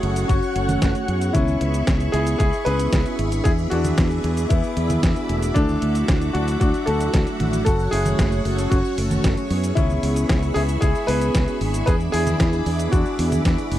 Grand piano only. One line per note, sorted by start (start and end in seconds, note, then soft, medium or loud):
0.00 0.26 E4 medium
0.00 0.31 G#4 loud
0.28 1.31 C#4 medium
0.28 1.30 F#4 medium
1.33 2.10 C#4 medium
1.33 2.13 E4 loud
2.12 2.39 E4 medium
2.12 2.37 G#4 loud
2.39 2.65 E4 medium
2.39 2.66 G#4 loud
2.65 3.16 G#4 medium
2.65 3.15 B4 loud
3.44 3.52 E4 medium
3.44 3.50 G#4 loud
3.70 4.47 D4 medium
3.70 4.52 F#4 loud
4.49 5.52 B3 medium
4.49 5.58 E4 medium
5.54 6.31 A3 medium
5.54 6.34 D4 loud
6.33 6.60 D4 medium
6.33 6.58 F#4 loud
6.60 6.86 D4 medium
6.60 6.87 F#4 loud
6.86 7.37 F#4 medium
6.86 7.36 A4 loud
7.65 7.91 F#4 medium
7.65 7.93 A4 loud
7.91 8.68 E4 medium
7.91 8.73 G#4 loud
8.70 9.73 C#4 medium
8.70 9.72 F#4 medium
9.75 10.52 C#4 medium
9.75 10.55 E4 loud
10.54 10.63 E4 medium
10.54 10.60 G#4 loud
10.81 11.07 E4 medium
10.81 11.06 G#4 loud
11.07 11.58 G#4 medium
11.07 11.57 B4 loud
11.86 11.94 G#4 medium
11.86 11.92 B4 loud
12.12 12.89 E4 medium
12.12 12.88 G#4 loud
12.91 13.79 D4 medium
12.91 13.79 F#4 loud